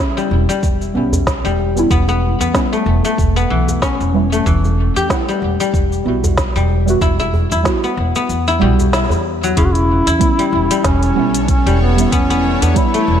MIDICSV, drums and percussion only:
0, 0, Header, 1, 3, 480
1, 0, Start_track
1, 0, Tempo, 638298
1, 1436, Time_signature, 4, 2, 24, 8
1, 9926, End_track
2, 0, Start_track
2, 0, Title_t, "Djembe"
2, 847, Note_on_c, 9, 64, 87
2, 922, Note_off_c, 9, 64, 0
2, 1191, Note_on_c, 9, 63, 32
2, 1266, Note_off_c, 9, 63, 0
2, 1433, Note_on_c, 9, 62, 56
2, 1508, Note_off_c, 9, 62, 0
2, 1564, Note_on_c, 9, 63, 58
2, 1640, Note_off_c, 9, 63, 0
2, 2635, Note_on_c, 9, 62, 38
2, 2710, Note_off_c, 9, 62, 0
2, 2769, Note_on_c, 9, 63, 67
2, 2844, Note_off_c, 9, 63, 0
2, 3360, Note_on_c, 9, 62, 58
2, 3435, Note_off_c, 9, 62, 0
2, 3496, Note_on_c, 9, 63, 58
2, 3571, Note_off_c, 9, 63, 0
2, 4692, Note_on_c, 9, 64, 87
2, 4768, Note_off_c, 9, 64, 0
2, 5034, Note_on_c, 9, 63, 36
2, 5110, Note_off_c, 9, 63, 0
2, 5275, Note_on_c, 9, 62, 69
2, 5350, Note_off_c, 9, 62, 0
2, 5408, Note_on_c, 9, 63, 60
2, 5413, Note_on_c, 9, 64, 73
2, 5484, Note_off_c, 9, 63, 0
2, 5488, Note_off_c, 9, 64, 0
2, 5517, Note_on_c, 9, 64, 78
2, 5592, Note_off_c, 9, 64, 0
2, 6474, Note_on_c, 9, 62, 37
2, 6549, Note_off_c, 9, 62, 0
2, 6613, Note_on_c, 9, 63, 71
2, 6688, Note_off_c, 9, 63, 0
2, 6845, Note_on_c, 9, 64, 80
2, 6848, Note_on_c, 9, 63, 32
2, 6921, Note_off_c, 9, 64, 0
2, 6924, Note_off_c, 9, 63, 0
2, 9926, End_track
3, 0, Start_track
3, 0, Title_t, "Drums"
3, 132, Note_on_c, 9, 82, 31
3, 207, Note_off_c, 9, 82, 0
3, 372, Note_on_c, 9, 82, 68
3, 447, Note_off_c, 9, 82, 0
3, 474, Note_on_c, 9, 36, 102
3, 475, Note_on_c, 9, 82, 54
3, 550, Note_off_c, 9, 36, 0
3, 551, Note_off_c, 9, 82, 0
3, 614, Note_on_c, 9, 82, 31
3, 689, Note_off_c, 9, 82, 0
3, 851, Note_on_c, 9, 82, 70
3, 926, Note_off_c, 9, 82, 0
3, 954, Note_on_c, 9, 36, 96
3, 955, Note_on_c, 9, 38, 85
3, 956, Note_on_c, 9, 82, 49
3, 1029, Note_off_c, 9, 36, 0
3, 1030, Note_off_c, 9, 38, 0
3, 1031, Note_off_c, 9, 82, 0
3, 1091, Note_on_c, 9, 82, 30
3, 1166, Note_off_c, 9, 82, 0
3, 1331, Note_on_c, 9, 82, 65
3, 1406, Note_off_c, 9, 82, 0
3, 1434, Note_on_c, 9, 36, 94
3, 1436, Note_on_c, 9, 82, 51
3, 1509, Note_off_c, 9, 36, 0
3, 1511, Note_off_c, 9, 82, 0
3, 1570, Note_on_c, 9, 82, 30
3, 1645, Note_off_c, 9, 82, 0
3, 1811, Note_on_c, 9, 82, 62
3, 1886, Note_off_c, 9, 82, 0
3, 1914, Note_on_c, 9, 36, 97
3, 1915, Note_on_c, 9, 38, 95
3, 1916, Note_on_c, 9, 82, 53
3, 1989, Note_off_c, 9, 36, 0
3, 1990, Note_off_c, 9, 38, 0
3, 1991, Note_off_c, 9, 82, 0
3, 2052, Note_on_c, 9, 82, 30
3, 2127, Note_off_c, 9, 82, 0
3, 2292, Note_on_c, 9, 82, 67
3, 2367, Note_off_c, 9, 82, 0
3, 2394, Note_on_c, 9, 36, 97
3, 2398, Note_on_c, 9, 82, 50
3, 2469, Note_off_c, 9, 36, 0
3, 2473, Note_off_c, 9, 82, 0
3, 2533, Note_on_c, 9, 82, 31
3, 2608, Note_off_c, 9, 82, 0
3, 2771, Note_on_c, 9, 82, 65
3, 2846, Note_off_c, 9, 82, 0
3, 2874, Note_on_c, 9, 36, 89
3, 2875, Note_on_c, 9, 38, 89
3, 2876, Note_on_c, 9, 82, 53
3, 2949, Note_off_c, 9, 36, 0
3, 2950, Note_off_c, 9, 38, 0
3, 2951, Note_off_c, 9, 82, 0
3, 3012, Note_on_c, 9, 82, 31
3, 3087, Note_off_c, 9, 82, 0
3, 3253, Note_on_c, 9, 82, 65
3, 3328, Note_off_c, 9, 82, 0
3, 3354, Note_on_c, 9, 36, 95
3, 3357, Note_on_c, 9, 82, 48
3, 3429, Note_off_c, 9, 36, 0
3, 3432, Note_off_c, 9, 82, 0
3, 3493, Note_on_c, 9, 82, 28
3, 3568, Note_off_c, 9, 82, 0
3, 3732, Note_on_c, 9, 82, 57
3, 3808, Note_off_c, 9, 82, 0
3, 3834, Note_on_c, 9, 36, 94
3, 3836, Note_on_c, 9, 38, 98
3, 3838, Note_on_c, 9, 82, 52
3, 3910, Note_off_c, 9, 36, 0
3, 3912, Note_off_c, 9, 38, 0
3, 3913, Note_off_c, 9, 82, 0
3, 3975, Note_on_c, 9, 82, 30
3, 4050, Note_off_c, 9, 82, 0
3, 4213, Note_on_c, 9, 82, 64
3, 4288, Note_off_c, 9, 82, 0
3, 4314, Note_on_c, 9, 36, 95
3, 4319, Note_on_c, 9, 82, 50
3, 4390, Note_off_c, 9, 36, 0
3, 4394, Note_off_c, 9, 82, 0
3, 4453, Note_on_c, 9, 82, 33
3, 4529, Note_off_c, 9, 82, 0
3, 4692, Note_on_c, 9, 82, 69
3, 4767, Note_off_c, 9, 82, 0
3, 4794, Note_on_c, 9, 36, 84
3, 4794, Note_on_c, 9, 38, 95
3, 4796, Note_on_c, 9, 82, 49
3, 4869, Note_off_c, 9, 36, 0
3, 4869, Note_off_c, 9, 38, 0
3, 4871, Note_off_c, 9, 82, 0
3, 4931, Note_on_c, 9, 82, 30
3, 5007, Note_off_c, 9, 82, 0
3, 5172, Note_on_c, 9, 82, 60
3, 5247, Note_off_c, 9, 82, 0
3, 5274, Note_on_c, 9, 36, 94
3, 5276, Note_on_c, 9, 82, 54
3, 5350, Note_off_c, 9, 36, 0
3, 5351, Note_off_c, 9, 82, 0
3, 5410, Note_on_c, 9, 82, 31
3, 5486, Note_off_c, 9, 82, 0
3, 5651, Note_on_c, 9, 82, 59
3, 5726, Note_off_c, 9, 82, 0
3, 5755, Note_on_c, 9, 36, 97
3, 5755, Note_on_c, 9, 38, 97
3, 5757, Note_on_c, 9, 82, 55
3, 5830, Note_off_c, 9, 36, 0
3, 5830, Note_off_c, 9, 38, 0
3, 5832, Note_off_c, 9, 82, 0
3, 5894, Note_on_c, 9, 82, 31
3, 5969, Note_off_c, 9, 82, 0
3, 6132, Note_on_c, 9, 82, 64
3, 6207, Note_off_c, 9, 82, 0
3, 6238, Note_on_c, 9, 82, 50
3, 6313, Note_off_c, 9, 82, 0
3, 6373, Note_on_c, 9, 82, 33
3, 6449, Note_off_c, 9, 82, 0
3, 6614, Note_on_c, 9, 82, 65
3, 6689, Note_off_c, 9, 82, 0
3, 6717, Note_on_c, 9, 38, 95
3, 6718, Note_on_c, 9, 82, 50
3, 6792, Note_off_c, 9, 38, 0
3, 6794, Note_off_c, 9, 82, 0
3, 6855, Note_on_c, 9, 82, 32
3, 6930, Note_off_c, 9, 82, 0
3, 7096, Note_on_c, 9, 82, 64
3, 7171, Note_off_c, 9, 82, 0
3, 7196, Note_on_c, 9, 36, 102
3, 7197, Note_on_c, 9, 42, 59
3, 7198, Note_on_c, 9, 82, 56
3, 7271, Note_off_c, 9, 36, 0
3, 7272, Note_off_c, 9, 42, 0
3, 7274, Note_off_c, 9, 82, 0
3, 7333, Note_on_c, 9, 42, 32
3, 7335, Note_on_c, 9, 82, 33
3, 7408, Note_off_c, 9, 42, 0
3, 7410, Note_off_c, 9, 82, 0
3, 7573, Note_on_c, 9, 42, 44
3, 7575, Note_on_c, 9, 82, 70
3, 7648, Note_off_c, 9, 42, 0
3, 7650, Note_off_c, 9, 82, 0
3, 7676, Note_on_c, 9, 36, 114
3, 7677, Note_on_c, 9, 42, 57
3, 7678, Note_on_c, 9, 82, 58
3, 7751, Note_off_c, 9, 36, 0
3, 7752, Note_off_c, 9, 42, 0
3, 7754, Note_off_c, 9, 82, 0
3, 7814, Note_on_c, 9, 42, 31
3, 7815, Note_on_c, 9, 82, 33
3, 7889, Note_off_c, 9, 42, 0
3, 7891, Note_off_c, 9, 82, 0
3, 8052, Note_on_c, 9, 42, 46
3, 8054, Note_on_c, 9, 82, 66
3, 8127, Note_off_c, 9, 42, 0
3, 8129, Note_off_c, 9, 82, 0
3, 8155, Note_on_c, 9, 38, 80
3, 8155, Note_on_c, 9, 42, 56
3, 8156, Note_on_c, 9, 36, 107
3, 8157, Note_on_c, 9, 82, 54
3, 8230, Note_off_c, 9, 38, 0
3, 8230, Note_off_c, 9, 42, 0
3, 8232, Note_off_c, 9, 36, 0
3, 8232, Note_off_c, 9, 82, 0
3, 8291, Note_on_c, 9, 42, 35
3, 8293, Note_on_c, 9, 82, 34
3, 8367, Note_off_c, 9, 42, 0
3, 8368, Note_off_c, 9, 82, 0
3, 8531, Note_on_c, 9, 42, 49
3, 8533, Note_on_c, 9, 82, 70
3, 8606, Note_off_c, 9, 42, 0
3, 8608, Note_off_c, 9, 82, 0
3, 8636, Note_on_c, 9, 36, 103
3, 8636, Note_on_c, 9, 42, 55
3, 8638, Note_on_c, 9, 82, 53
3, 8711, Note_off_c, 9, 42, 0
3, 8712, Note_off_c, 9, 36, 0
3, 8713, Note_off_c, 9, 82, 0
3, 8774, Note_on_c, 9, 42, 33
3, 8776, Note_on_c, 9, 82, 34
3, 8849, Note_off_c, 9, 42, 0
3, 8851, Note_off_c, 9, 82, 0
3, 9012, Note_on_c, 9, 42, 51
3, 9013, Note_on_c, 9, 82, 70
3, 9087, Note_off_c, 9, 42, 0
3, 9089, Note_off_c, 9, 82, 0
3, 9116, Note_on_c, 9, 36, 105
3, 9118, Note_on_c, 9, 42, 55
3, 9119, Note_on_c, 9, 82, 61
3, 9191, Note_off_c, 9, 36, 0
3, 9193, Note_off_c, 9, 42, 0
3, 9194, Note_off_c, 9, 82, 0
3, 9254, Note_on_c, 9, 42, 31
3, 9255, Note_on_c, 9, 82, 33
3, 9329, Note_off_c, 9, 42, 0
3, 9330, Note_off_c, 9, 82, 0
3, 9492, Note_on_c, 9, 42, 45
3, 9493, Note_on_c, 9, 82, 66
3, 9567, Note_off_c, 9, 42, 0
3, 9569, Note_off_c, 9, 82, 0
3, 9596, Note_on_c, 9, 36, 109
3, 9596, Note_on_c, 9, 42, 57
3, 9598, Note_on_c, 9, 82, 61
3, 9671, Note_off_c, 9, 36, 0
3, 9671, Note_off_c, 9, 42, 0
3, 9673, Note_off_c, 9, 82, 0
3, 9733, Note_on_c, 9, 42, 31
3, 9734, Note_on_c, 9, 82, 34
3, 9808, Note_off_c, 9, 42, 0
3, 9809, Note_off_c, 9, 82, 0
3, 9926, End_track
0, 0, End_of_file